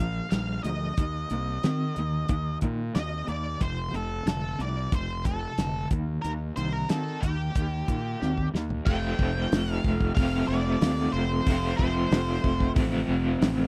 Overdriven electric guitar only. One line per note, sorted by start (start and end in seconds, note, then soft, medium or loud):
0.00 0.29 A#2 medium
0.00 0.29 F3 medium
0.33 0.62 A#2 medium
0.33 0.62 G3 medium
0.65 0.95 A#2 medium
0.65 0.95 F3 medium
0.98 1.28 D#3 medium
0.98 1.28 A#3 medium
1.31 1.61 D#3 medium
1.31 1.61 A#3 medium
1.64 1.94 D#3 medium
1.64 1.94 C4 medium
1.98 2.27 D#3 medium
1.98 2.27 A#3 medium
2.29 2.59 D#3 medium
2.29 2.59 A#3 medium
2.62 2.92 D#3 medium
2.62 2.93 A#3 medium
2.96 3.25 D#3 medium
2.96 3.25 C4 medium
3.28 3.58 D#3 medium
3.28 3.58 A#3 medium
3.61 3.91 F2 medium
3.61 3.91 C3 medium
3.94 4.24 F2 medium
3.94 4.24 C3 medium
4.26 4.56 F2 medium
4.26 4.57 D3 medium
4.59 4.89 F2 medium
4.59 4.90 C3 medium
4.93 5.22 F2 medium
4.93 5.23 C3 medium
5.26 5.55 F2 medium
5.26 5.56 C3 medium
5.59 5.88 F2 medium
5.59 5.89 D3 medium
5.91 6.21 D#3 medium
5.91 6.21 A#3 medium
6.25 6.54 D#3 medium
6.25 6.54 A#3 medium
6.57 6.87 D#3 medium
6.57 6.87 A#3 medium
6.91 7.20 D#3 medium
6.91 7.20 C4 medium
7.24 7.53 D#3 medium
7.24 7.53 A#3 medium
7.56 7.85 D#3 medium
7.56 7.85 A#3 medium
7.89 8.18 D#3 medium
7.89 8.18 A#3 medium
8.21 8.50 D#3 medium
8.21 8.51 C4 medium
8.54 8.83 D#3 medium
8.54 8.83 A#3 medium
8.85 10.14 F2 loud
8.85 10.14 C3 medium
8.85 10.17 F3 medium
8.85 10.15 A3 loud
8.85 10.16 C4 medium
8.85 10.19 F4 loud
10.16 11.44 F2 medium
10.16 11.45 C3 medium
10.16 11.46 F3 medium
10.16 11.46 A3 medium
10.16 11.46 C4 medium
10.20 11.49 F4 medium
11.45 12.73 F2 medium
11.45 12.74 C3 medium
11.45 12.76 F3 loud
11.45 12.75 A3 loud
11.45 12.76 C4 loud
11.45 12.78 F4 loud
12.75 13.67 F2 medium
12.75 13.67 C3 medium
12.75 13.67 F3 medium
12.75 13.67 A3 medium
12.75 13.67 C4 medium
12.79 13.67 F4 medium